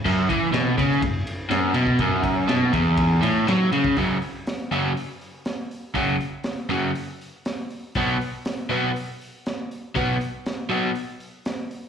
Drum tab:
CC |x---------------|----------------|----------------|----------------|
RD |--x-x-x-x-x-x-x-|x-x-x-x-x-x-x-x-|----------------|----------------|
HH |----------------|----------------|o-o-o-o-o-o-o-o-|o-o-o-o-o-o-o-o-|
SD |----o--o----o---|----o-------o---|----o-------o---|----o-------o---|
BD |o-o---o-o------o|o-o---o-o------o|o---------------|o---------------|

CC |----------------|----------------|
RD |----------------|----------------|
HH |o-o-o-o-o-o-o-o-|o-o-o-o-o-o-o-o-|
SD |----o-------o---|----o-------o---|
BD |o---------------|o---------------|